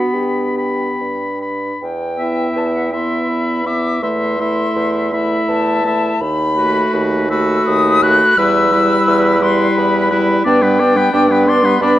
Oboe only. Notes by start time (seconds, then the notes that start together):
Already playing: B5
0.57 B5
1.41 B5
2.18 E5
2.93 E5
3.66 E5
4.03 E5
4.41 E5
5.13 E5
5.86 E5
6.57 B4
7.31 B4
8.03 B4
8.38 B4
8.73 B4
9.42 B4
10.11 B4
10.45 D5
10.62 B4
10.79 D5
10.96 B4
11.14 D5
11.31 B4
11.48 D5
11.65 B4
11.82 D5